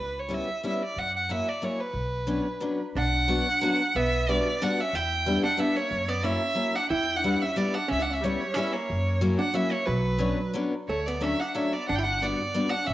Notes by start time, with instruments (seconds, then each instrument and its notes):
Already playing: upright bass C#2, violin B4
0.19 violin C#5
0.29 steel-string acoustic guitar G3 B3 C#4 E4
0.34 violin E5
0.63 steel-string acoustic guitar G3 B3 C#4 E4, violin E5
0.84 violin D5
0.96 upright bass F#2, violin F#5
1.16 violin F#5
1.29 steel-string acoustic guitar F#3 A#3 C#4 E4, violin E5
1.49 violin D5
1.62 steel-string acoustic guitar F#3 A#3 C#4 E4, violin C#5
1.80 violin B4
1.93 upright bass B1
2.27 steel-string acoustic guitar F#3 B3 C#4 D4
2.60 steel-string acoustic guitar F#3 B3 C#4 D4
2.95 upright bass B1, hollow-body jazz guitar D4, violin F#5
3.28 steel-string acoustic guitar F#3 B3 D4 F#4
3.61 steel-string acoustic guitar F#3 B3 D4 F#4
3.95 upright bass B1, hollow-body jazz guitar B3, violin E5
4.29 steel-string acoustic guitar G3 B3 D4 F#4, hollow-body jazz guitar B3, violin D5
4.62 steel-string acoustic guitar G3 B3 D4 F#4, hollow-body jazz guitar D4, violin F#5
4.80 hollow-body jazz guitar C#4, violin E5
4.93 upright bass E2, hollow-body jazz guitar E4, violin G5
5.26 steel-string acoustic guitar G3 B3 D4 E4
5.43 hollow-body jazz guitar D4, violin F#5
5.57 steel-string acoustic guitar G3 B3 D4 E4, hollow-body jazz guitar B3, violin E5
5.76 hollow-body jazz guitar A#3, violin C#5
5.91 upright bass F#2
6.08 hollow-body jazz guitar B3, violin D5
6.22 steel-string acoustic guitar F#3 A#3 C#4 E4, hollow-body jazz guitar C#4, violin E5
6.55 steel-string acoustic guitar F#3 A#3 C#4 E4
6.75 hollow-body jazz guitar D4, violin F#5
6.90 upright bass E2, hollow-body jazz guitar E4, violin G5
7.16 hollow-body jazz guitar D4, violin F#5
7.24 steel-string acoustic guitar G3 B3 D4 E4
7.42 hollow-body jazz guitar C#4, violin E5
7.56 steel-string acoustic guitar G3 B3 D4 E4, hollow-body jazz guitar B3, violin D5
7.74 hollow-body jazz guitar D4, violin F#5
7.88 upright bass C#2, hollow-body jazz guitar C#4, violin E5
7.99 hollow-body jazz guitar D4, violin F#5
8.10 hollow-body jazz guitar C#4, violin E5
8.21 hollow-body jazz guitar G3, steel-string acoustic guitar G3 C#4, violin C#5
8.25 steel-string acoustic guitar B3 E4
8.54 steel-string acoustic guitar G3 B3 C#4 E4, hollow-body jazz guitar C#4, violin E5
8.72 hollow-body jazz guitar A#3, violin C#5
8.90 upright bass F#2
9.21 steel-string acoustic guitar F#3 A#3 C#4 E4
9.39 hollow-body jazz guitar D4, violin F#5
9.54 steel-string acoustic guitar F#3 A#3 C#4 E4, hollow-body jazz guitar C#4, violin E5
9.71 hollow-body jazz guitar A#3, violin C#5
9.86 upright bass B1, hollow-body jazz guitar F#3, violin B4
10.19 steel-string acoustic guitar F#3 B3 C#4 D4
10.54 steel-string acoustic guitar F#3 B3 C#4 D4
10.88 upright bass D2, hollow-body jazz guitar A3, violin C#5
11.06 hollow-body jazz guitar B3, violin D5
11.21 steel-string acoustic guitar F#3 A3 C#4 D4, hollow-body jazz guitar C#4, violin E5
11.40 hollow-body jazz guitar D4, violin F#5
11.55 steel-string acoustic guitar F#3 A3 C#4 D4, hollow-body jazz guitar C#4, violin E5
11.73 hollow-body jazz guitar B3, violin D5
11.88 upright bass G1, hollow-body jazz guitar D4, violin F#5
11.95 hollow-body jazz guitar E4, violin G5
12.03 hollow-body jazz guitar D4, violin F#5
12.21 steel-string acoustic guitar G3 B3 D4 F#4, hollow-body jazz guitar B3, violin D5
12.54 steel-string acoustic guitar G3 B3 D4 F#4
12.69 hollow-body jazz guitar D4, violin F#5
12.84 upright bass A1, hollow-body jazz guitar C#4, violin E5